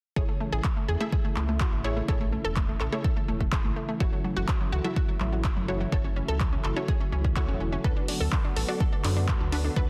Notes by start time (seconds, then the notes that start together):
0.16 A1 C#3 E3 A3 E4 G#4 A4 C#5, kick
0.29 A3
0.40 A3
0.52 A1 G#4
0.64 A3, kick, clap
0.77 A3
0.88 E2 G#4
1.01 A3 E4 G#4 A4 E5
1.12 G#4, kick
1.25 A3
1.36 C#2 A3, clap
1.49 A3
1.60 F#4, kick, clap
1.73 A1 A3
1.84 A3 E4 G#4 A4 C#5
1.96 A3
2.08 A1 E4 G#4 A4 C#5, kick
2.21 A3
2.32 A3
2.45 E1 A4
2.56 A3, kick, clap
2.69 A3
2.80 A1 A4, clap
2.92 A3 E4 G#4 A4 C#5
3.04 A4, kick
3.16 A3
3.28 E1 A3
3.40 A3, kick
3.52 G#4, kick, clap
3.64 A1 A3
3.76 A3
3.88 A3
4.00 F#1 F#3 A3 E4 F#4 A4 C#5, kick
4.13 F#3
4.24 F#3
4.36 F#1 F#4
4.48 kick, clap
4.61 F#3
4.72 C#2 F#4
4.84 F#3 E4 F#4 A4 E5
4.96 F#4, kick
5.08 F#3
5.20 A1 F#3, clap
5.32 F#3
5.44 E4, kick, clap
5.56 F#1 F#3
5.68 F#3 E4 F#4 A4 C#5
5.80 F#3
5.92 F#1 E4 F#4 A4 C#5, kick
6.04 C#4
6.16 C#4
6.28 C#2 A4
6.40 C#4, kick, clap
6.52 C#4
6.64 F#1 A4, clap
6.76 C#4 E4 F#4 A4 C#5
6.88 G#4, kick
7.00 C#4
7.12 C#2 C#4
7.24 C#4, kick
7.36 E4 F#4 A4 C#5, kick, clap
7.48 E1 C#4
7.60 C#4
7.72 C#4
7.84 D2 D3 B3 D4 F#4 A4 B4, kick
7.96 D4
8.08 D4, open hi-hat
8.20 D2 A4
8.32 D4, kick, clap
8.44 D4
8.56 A1 A4, open hi-hat
8.68 D4 F#4 A4 D5
8.80 A4, kick
8.92 D4
9.04 F#2 D4, clap, open hi-hat
9.16 D4
9.28 A4, kick, clap
9.40 D2 D4
9.52 D4 F#4 A4 B4, open hi-hat
9.64 D4
9.76 D2 D4 F#4 A4 B4, kick